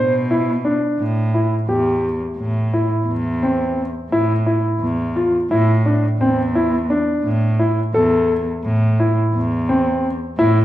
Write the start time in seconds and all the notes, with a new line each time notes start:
Already playing: B2 C5
0.31 E4
0.65 D4
0.99 A2
1.34 E4
1.68 E2 G4
2.37 A2
2.74 E4
3.07 E2
3.43 C4
4.11 A2 E4
4.46 E4
4.81 E2
5.16 F4
5.50 A2 E4
5.86 D4
6.19 E2 C4
6.55 E4
6.90 D4
7.24 A2
7.59 E4
7.94 E2 A4
8.64 A2
9.00 E4
9.34 E2
9.69 C4
10.38 A2 E4